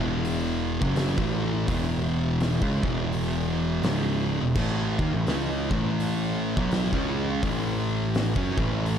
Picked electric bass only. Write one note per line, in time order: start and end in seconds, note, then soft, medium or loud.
0.00 0.78 E1 loud
0.82 1.16 F#1 loud
1.18 1.65 A1 loud
1.68 2.58 E1 loud
2.62 2.82 C#2 medium
2.83 3.80 E1 loud
3.83 4.38 C#1 loud
4.41 4.55 E1 medium
4.56 4.96 A1 medium
4.99 5.12 D#2 medium
5.14 5.27 A1 medium
5.28 5.68 C#2 loud
5.71 6.53 A1 loud
6.58 6.91 B1 loud
6.93 7.40 C#2 medium
7.43 8.32 A1 medium
8.36 8.56 F#2 medium
8.58 8.99 A1 loud